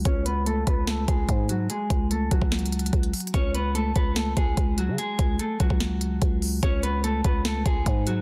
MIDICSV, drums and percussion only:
0, 0, Header, 1, 2, 480
1, 0, Start_track
1, 0, Tempo, 410959
1, 62, Time_signature, 4, 2, 24, 8
1, 9595, End_track
2, 0, Start_track
2, 0, Title_t, "Drums"
2, 61, Note_on_c, 9, 42, 87
2, 62, Note_on_c, 9, 36, 114
2, 178, Note_off_c, 9, 36, 0
2, 178, Note_off_c, 9, 42, 0
2, 302, Note_on_c, 9, 42, 85
2, 419, Note_off_c, 9, 42, 0
2, 542, Note_on_c, 9, 42, 72
2, 659, Note_off_c, 9, 42, 0
2, 782, Note_on_c, 9, 42, 70
2, 783, Note_on_c, 9, 36, 100
2, 899, Note_off_c, 9, 42, 0
2, 900, Note_off_c, 9, 36, 0
2, 1021, Note_on_c, 9, 38, 113
2, 1022, Note_on_c, 9, 42, 74
2, 1138, Note_off_c, 9, 38, 0
2, 1139, Note_off_c, 9, 42, 0
2, 1262, Note_on_c, 9, 42, 71
2, 1263, Note_on_c, 9, 36, 94
2, 1379, Note_off_c, 9, 36, 0
2, 1379, Note_off_c, 9, 42, 0
2, 1502, Note_on_c, 9, 36, 102
2, 1502, Note_on_c, 9, 42, 74
2, 1619, Note_off_c, 9, 36, 0
2, 1619, Note_off_c, 9, 42, 0
2, 1742, Note_on_c, 9, 42, 76
2, 1859, Note_off_c, 9, 42, 0
2, 1982, Note_on_c, 9, 42, 90
2, 2099, Note_off_c, 9, 42, 0
2, 2222, Note_on_c, 9, 36, 98
2, 2222, Note_on_c, 9, 42, 87
2, 2338, Note_off_c, 9, 36, 0
2, 2339, Note_off_c, 9, 42, 0
2, 2462, Note_on_c, 9, 42, 70
2, 2579, Note_off_c, 9, 42, 0
2, 2701, Note_on_c, 9, 42, 77
2, 2703, Note_on_c, 9, 36, 102
2, 2818, Note_off_c, 9, 42, 0
2, 2819, Note_off_c, 9, 36, 0
2, 2821, Note_on_c, 9, 36, 87
2, 2938, Note_off_c, 9, 36, 0
2, 2941, Note_on_c, 9, 38, 113
2, 2942, Note_on_c, 9, 42, 48
2, 3022, Note_off_c, 9, 42, 0
2, 3022, Note_on_c, 9, 42, 55
2, 3058, Note_off_c, 9, 38, 0
2, 3102, Note_off_c, 9, 42, 0
2, 3102, Note_on_c, 9, 42, 62
2, 3182, Note_off_c, 9, 42, 0
2, 3182, Note_on_c, 9, 42, 65
2, 3262, Note_off_c, 9, 42, 0
2, 3262, Note_on_c, 9, 42, 73
2, 3342, Note_off_c, 9, 42, 0
2, 3342, Note_on_c, 9, 42, 78
2, 3422, Note_off_c, 9, 42, 0
2, 3422, Note_on_c, 9, 36, 103
2, 3422, Note_on_c, 9, 42, 59
2, 3538, Note_off_c, 9, 42, 0
2, 3539, Note_off_c, 9, 36, 0
2, 3542, Note_on_c, 9, 42, 61
2, 3659, Note_off_c, 9, 42, 0
2, 3661, Note_on_c, 9, 42, 43
2, 3661, Note_on_c, 9, 46, 76
2, 3741, Note_off_c, 9, 42, 0
2, 3741, Note_on_c, 9, 42, 58
2, 3778, Note_off_c, 9, 46, 0
2, 3821, Note_off_c, 9, 42, 0
2, 3821, Note_on_c, 9, 42, 76
2, 3901, Note_off_c, 9, 42, 0
2, 3901, Note_on_c, 9, 36, 117
2, 3901, Note_on_c, 9, 42, 88
2, 4017, Note_off_c, 9, 42, 0
2, 4018, Note_off_c, 9, 36, 0
2, 4141, Note_on_c, 9, 42, 85
2, 4257, Note_off_c, 9, 42, 0
2, 4381, Note_on_c, 9, 42, 71
2, 4498, Note_off_c, 9, 42, 0
2, 4620, Note_on_c, 9, 42, 70
2, 4622, Note_on_c, 9, 36, 101
2, 4737, Note_off_c, 9, 42, 0
2, 4739, Note_off_c, 9, 36, 0
2, 4860, Note_on_c, 9, 38, 114
2, 4860, Note_on_c, 9, 42, 76
2, 4976, Note_off_c, 9, 38, 0
2, 4977, Note_off_c, 9, 42, 0
2, 5101, Note_on_c, 9, 36, 94
2, 5101, Note_on_c, 9, 42, 72
2, 5218, Note_off_c, 9, 36, 0
2, 5218, Note_off_c, 9, 42, 0
2, 5340, Note_on_c, 9, 42, 70
2, 5341, Note_on_c, 9, 36, 105
2, 5457, Note_off_c, 9, 42, 0
2, 5458, Note_off_c, 9, 36, 0
2, 5580, Note_on_c, 9, 42, 77
2, 5697, Note_off_c, 9, 42, 0
2, 5820, Note_on_c, 9, 42, 89
2, 5937, Note_off_c, 9, 42, 0
2, 6060, Note_on_c, 9, 42, 87
2, 6061, Note_on_c, 9, 36, 95
2, 6177, Note_off_c, 9, 36, 0
2, 6177, Note_off_c, 9, 42, 0
2, 6300, Note_on_c, 9, 42, 68
2, 6417, Note_off_c, 9, 42, 0
2, 6540, Note_on_c, 9, 42, 76
2, 6541, Note_on_c, 9, 36, 98
2, 6657, Note_off_c, 9, 42, 0
2, 6658, Note_off_c, 9, 36, 0
2, 6660, Note_on_c, 9, 36, 90
2, 6777, Note_off_c, 9, 36, 0
2, 6779, Note_on_c, 9, 38, 113
2, 6780, Note_on_c, 9, 42, 76
2, 6896, Note_off_c, 9, 38, 0
2, 6897, Note_off_c, 9, 42, 0
2, 7020, Note_on_c, 9, 42, 73
2, 7137, Note_off_c, 9, 42, 0
2, 7260, Note_on_c, 9, 42, 71
2, 7261, Note_on_c, 9, 36, 102
2, 7377, Note_off_c, 9, 42, 0
2, 7378, Note_off_c, 9, 36, 0
2, 7501, Note_on_c, 9, 46, 75
2, 7618, Note_off_c, 9, 46, 0
2, 7741, Note_on_c, 9, 36, 116
2, 7741, Note_on_c, 9, 42, 84
2, 7858, Note_off_c, 9, 36, 0
2, 7858, Note_off_c, 9, 42, 0
2, 7981, Note_on_c, 9, 42, 82
2, 8098, Note_off_c, 9, 42, 0
2, 8221, Note_on_c, 9, 42, 72
2, 8338, Note_off_c, 9, 42, 0
2, 8461, Note_on_c, 9, 42, 72
2, 8462, Note_on_c, 9, 36, 100
2, 8578, Note_off_c, 9, 42, 0
2, 8579, Note_off_c, 9, 36, 0
2, 8701, Note_on_c, 9, 38, 113
2, 8702, Note_on_c, 9, 42, 78
2, 8818, Note_off_c, 9, 38, 0
2, 8819, Note_off_c, 9, 42, 0
2, 8942, Note_on_c, 9, 36, 94
2, 8942, Note_on_c, 9, 42, 73
2, 9059, Note_off_c, 9, 36, 0
2, 9059, Note_off_c, 9, 42, 0
2, 9182, Note_on_c, 9, 36, 106
2, 9182, Note_on_c, 9, 42, 71
2, 9298, Note_off_c, 9, 42, 0
2, 9299, Note_off_c, 9, 36, 0
2, 9422, Note_on_c, 9, 42, 76
2, 9538, Note_off_c, 9, 42, 0
2, 9595, End_track
0, 0, End_of_file